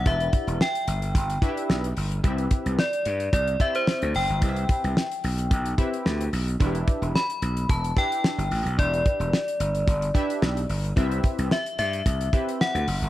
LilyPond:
<<
  \new Staff \with { instrumentName = "Synth bell" } { \time 4/4 \key e \minor \tempo 4 = 110 e''4 g''2 r4 | r4 d''4 d''8 e''16 c''8. g''8~ | g''2~ g''8 r4. | r4 b''4 a''8 g''4 r8 |
d''2. r4 | r4 e''8 e''4. fis''4 | }
  \new Staff \with { instrumentName = "Analog polysynth" } { \time 4/4 \key e \minor <d' e' g' b' e''>4 r4. <d' e' fis' g' b' e''>4 r8 | <c' e' g' b' e''>4 r4. <c' e' g' c'' e''>4 r8 | <c' e' g' b' dis'' e''>4 r4. <c' e' g' b' e''>4 r8 | <d' e' fis' g' b' e''>4 r4. <d' e' g' b' e''>4 r8 |
<d' e' g' b' e''>4 r4. <d' e' g' b' e''>4 r8 | <c' e' g' b' e''>4 r4. <c' e' g' b' e''>4 r8 | }
  \new Staff \with { instrumentName = "Slap bass" } { \clef bass \time 4/4 \key e \minor e,,8 r16 e,,16 r8 g,,8 g,,8 r8 b,,8 g,,8 | c,8 r16 c,16 r8 g,8 c,8 r8. d,16 fis,,16 g,,16 | c,8 r16 c,16 r8 b,,8 b,,8 r8 d,8 b,,8 | e,,8 r16 e,,16 r8 b,,8 e,,8 r8. g,,16 a,,16 b,,16 |
e,,8 r16 e,,16 r8 g,,8 g,,8 r8 b,,8 g,,8 | c,8 r16 c,16 r8 g,8 c,8 r8. d,16 fis,,16 g,,16 | }
  \new DrumStaff \with { instrumentName = "Drums" } \drummode { \time 4/4 <hh bd>16 hh16 <hh bd>16 hh16 sn16 hh16 hh16 hh16 <hh bd>16 hh16 <hh bd>16 hh16 sn16 hh16 hho16 hh16 | <hh bd>16 hh16 <hh bd>16 hh16 sn16 hh16 hh16 hh16 <hh bd>16 hh16 <hh bd>16 hh16 sn16 hh16 hho16 hh16 | <hh bd>16 hh16 <hh bd>16 hh16 sn16 hh16 hho16 hh16 <hh bd>16 hh16 <hh bd>16 hh16 sn16 hh16 hho16 hh16 | <hh bd>16 hh16 <hh bd>16 hh16 sn16 hh16 hh16 hh16 <hh bd>16 hh16 <hh bd>16 hh16 sn16 hh16 hho16 hh16 |
<hh bd>16 hh16 <hh bd>16 hh16 sn16 hh16 hh16 hh16 <hh bd>16 hh16 <hh bd>16 hh16 sn16 hh16 hho16 hh16 | <hh bd>16 hh16 <hh bd>16 hh16 sn16 hh16 hh16 hh16 <hh bd>16 hh16 <hh bd>16 hh16 sn16 hh16 hho16 hh16 | }
>>